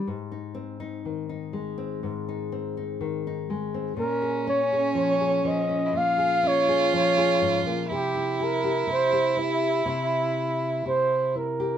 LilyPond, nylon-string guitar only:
\new Staff \with { instrumentName = "Nylon-string guitar" } { \time 4/4 \key aes \major \tempo 4 = 61 << { r16 ees'16 c'16 ees'8 ees'8 c'8 ees'16 c'16 ees'8 ees'8 c'16 | r16 aes'16 des'16 aes'8 aes'8 des'8 aes'16 des'16 aes'8 aes'8. | r16 e'16 g'16 g'8 g'2~ g'8 g'16 | } \\ { aes,4 ees8 aes8 aes,4 ees8 aes8 | bes,4 f8 f8 bes,4 f8 aes,16 bes,16 | c4 c8 e'8 c4 c8 e'8 | } >> }